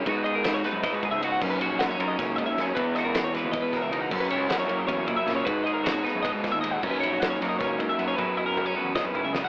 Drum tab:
CC |-------|x------|-------|x------|
RD |xxxxxxx|-xxxxxx|xxxxxxx|-xxxxxx|
SD |--ooo--|--o-o-o|-ooo-o-|--o---o|
T1 |-------|-------|-------|-------|
T2 |-------|-------|-------|-------|
FT |-------|-------|-------|-------|
BD |o---oo-|o---oo-|o---oo-|o---oo-|

CC |-------|x------|-------|
RD |xxxxxxx|-xxxxxx|-------|
SD |--oo-o-|--ooo--|----o-o|
T1 |-------|-------|o------|
T2 |-------|-------|--o----|
FT |-------|-------|-----o-|
BD |o---oo-|o---oo-|o---o--|